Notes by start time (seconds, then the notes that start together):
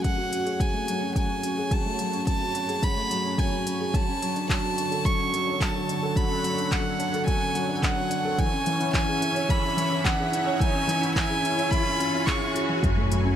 Already playing: F#3 A3 C#4 F#4 G#4 C#5
0.04 F#3 F#5, kick, closed hi-hat
0.18 F#4
0.31 C#4, closed hi-hat
0.45 G#4, closed hi-hat
0.60 F#3 G#5, kick, closed hi-hat
0.74 A3
0.88 F#3, closed hi-hat
1.01 C#4
1.15 F#3 G#5, kick, closed hi-hat
1.29 F#4
1.43 C#4, closed hi-hat
1.57 G#4
1.71 F#3 A5, kick, closed hi-hat
1.86 A3
1.99 F#3, closed hi-hat
2.13 C#4, closed hi-hat
2.27 F#3 A5, kick, closed hi-hat
2.41 F#4
2.55 C#4, closed hi-hat
2.68 G#4, closed hi-hat
2.82 F#3 B5, kick, closed hi-hat
2.96 A3
3.11 F#3, closed hi-hat
3.25 C#4
3.38 F#3 G#5, kick, closed hi-hat
3.53 F#4
3.67 C#4, closed hi-hat
3.80 G#4
3.94 D3 F#3 A5, kick, closed hi-hat, riser
4.08 C#4
4.22 F#3, closed hi-hat
4.36 D4, closed hi-hat
4.48 F#3 A4 A5, kick, clap, closed hi-hat
4.64 F#4
4.78 D4, closed hi-hat
4.91 A4, closed hi-hat
5.05 F#3 C#6, kick, closed hi-hat
5.19 C#4
5.33 F#3, closed hi-hat
5.47 D4
5.53 F#5
5.61 F#3 A5, kick, clap, closed hi-hat
5.74 F#4
5.89 D4, closed hi-hat
6.02 A4
6.16 F#3 B5, kick, closed hi-hat
6.30 C#4
6.44 F#3, closed hi-hat
6.58 D4, closed hi-hat
6.71 F#3 F#5, kick, clap, closed hi-hat
6.85 F#4
7.00 D4, closed hi-hat
7.13 A4, closed hi-hat
7.27 F#3 G#5, kick, closed hi-hat
7.41 C#4
7.55 F#3, closed hi-hat
7.68 D4
7.75 G#5
7.82 F#3 F#5, kick, clap, closed hi-hat
7.96 F#4
8.10 D4, closed hi-hat
8.25 A4
8.38 E3 C#4 G#5, kick, closed hi-hat
8.53 C#4
8.65 E3 E5, closed hi-hat
8.80 E4, closed hi-hat
8.94 E3 G#5, kick, clap, closed hi-hat
9.08 G#4
9.22 E4, closed hi-hat
9.35 C#5, closed hi-hat
9.49 E3 B5, kick, closed hi-hat
9.54 G#5
9.63 C#4
9.77 E3, closed hi-hat
9.91 E4
10.05 E3 F#5, kick, clap, closed hi-hat
10.19 G#4
10.32 E4, closed hi-hat
10.46 C#5
10.60 E3 G#5, kick, closed hi-hat
10.73 C#4
10.87 E3, closed hi-hat
11.02 E4, closed hi-hat
11.15 E3 G#5, kick, clap, closed hi-hat
11.29 G#4
11.43 E4, closed hi-hat
11.57 C#5, closed hi-hat
11.71 E3 B5, kick, closed hi-hat
11.86 C#4
12.00 C#4, closed hi-hat
12.13 E4
12.26 G#4 C#6, kick, clap, closed hi-hat
12.41 C#4
12.55 G#4, closed hi-hat
12.69 E3
12.83 F#2 F#3 F#4, kick, closed hi-hat, impact
12.97 A3
13.11 F#3, closed hi-hat
13.24 C#4